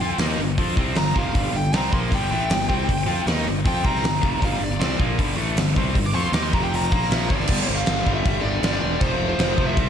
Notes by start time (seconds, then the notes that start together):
Already playing: G5
0.00 F2 F3 C4 F4
0.18 D#2 D#3 A#3 D#4, snare, open hi-hat
0.37 G1 G2 D3
0.58 F2 F3 C4 F4, kick, open hi-hat
0.76 C2 C3 G3 C4, kick
0.95 G1 G2 D3 A#5, snare, open hi-hat
1.14 F1 F2 C3 F3 F5, kick
1.35 G1 G2 D3 G3, kick, open hi-hat
1.52 G1 G2 D3 G5
1.73 C2 C3 G3 C4 A#5, snare, open hi-hat
1.93 A#1 A#2 F3 A#3 C6, kick
2.11 G1 G2 D3 G3 G5, kick, open hi-hat
2.31 A1 A2 E3 A3
2.50 G1 G2 D3, snare, open hi-hat
2.69 C2 C3 G3 C4, kick
2.88 G1 G2 D3, kick, open hi-hat
3.06 F2 F3 C4 F4
3.26 D#2 D#3 A#3 D#4, snare, open hi-hat
3.46 G1 G2 D3
3.65 F2 F3 C4 F4 G5, kick, open hi-hat
3.83 C2 C3 G3 C4 A#5, kick
3.96 snare
4.03 G1 G2 D3, snare, open hi-hat
4.21 F1 F2 C3 F3, kick
4.41 G1 G2 D3 G3, kick, open hi-hat
4.45 F5
4.60 G1 G2 D3
4.64 D5
4.79 C2 C3 G3 C4 D5, snare, open hi-hat
4.98 A#1 A#2 F3 A#3, kick
5.18 G1 G2 D3 G3, kick, open hi-hat
5.36 A1 A2 E3 A3
5.55 G1 G2 D3, snare, open hi-hat
5.76 C2 C3 G3 C4, kick
5.94 G1 G2 D3, kick, open hi-hat
6.06 D6
6.14 F2 F3 C4 F4 C#6
6.23 C6
6.32 D#2 D#3 A#3 D#4 D6, snare, open hi-hat
6.43 C6
6.52 F1 F2 C3 F3 A#5, kick
6.64 G5
6.74 A#5, open hi-hat
6.92 A#1 A#2 F3 A#3 A#5, kick
7.03 snare
7.11 E5, snare, open hi-hat
7.28 G1 G2 D3 G3 D5, kick
7.40 snare
7.48 G1 G2 D3 G3, kick, crash
7.59 snare
7.68 G1
7.76 F5
7.86 G1, snare, crash
8.05 G1 G2 D3 G3, kick
8.14 E5
8.25 G1, kick, crash
8.42 G1 D5
8.62 G1 G2 D3, snare, crash
8.67 G3
8.74 D5
8.83 E1
9.00 F1 F2 C3 F3 C5, kick, crash
9.20 F1
9.29 C5
9.38 F1, snare, crash
9.57 F1 F2 C3 F3, kick
9.66 E5
9.75 C2 C3 G3, kick, crash
9.79 C4